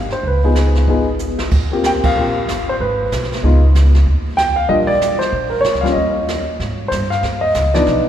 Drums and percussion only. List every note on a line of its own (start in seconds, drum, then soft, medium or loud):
0.10 snare soft
0.23 brush sweep soft
0.23 kick soft
0.55 snare medium
0.55 hi-hat pedal medium
0.75 snare soft
0.87 brush sweep soft
0.87 kick soft
1.19 hi-hat pedal medium
1.39 snare medium
1.51 brush sweep soft
1.51 kick medium
1.51 crash medium
1.84 snare medium
1.84 hi-hat pedal medium
2.03 kick medium
2.03 ride medium
2.16 brush sweep soft
2.48 snare medium
2.48 hi-hat pedal medium
2.80 brush sweep soft
2.80 kick soft
3.12 snare medium
3.12 hi-hat pedal medium
3.24 snare soft
3.32 snare soft
3.34 snare soft
3.44 brush sweep soft
3.44 kick soft
3.75 snare medium
3.75 hi-hat pedal medium
3.94 snare soft
4.06 brush sweep soft
4.06 kick soft
4.38 snare medium
4.38 hi-hat pedal soft
4.69 brush sweep soft
4.69 kick soft
5.01 snare medium
5.01 hi-hat pedal medium
5.21 snare soft
5.33 brush sweep soft
5.33 kick soft
5.64 snare medium
5.64 hi-hat pedal medium
5.75 snare soft
5.86 snare soft
5.96 brush sweep soft
5.96 kick soft
6.28 snare medium
6.28 hi-hat pedal medium
6.60 brush sweep soft
6.60 kick soft
6.60 snare soft
6.92 kick soft
6.92 snare medium
6.92 hi-hat pedal soft
7.12 snare soft
7.23 brush sweep soft
7.23 kick soft
7.23 snare soft
7.54 kick soft
7.54 snare medium
7.54 hi-hat pedal soft
7.74 snare soft
7.86 brush sweep soft
7.86 kick soft
7.86 snare soft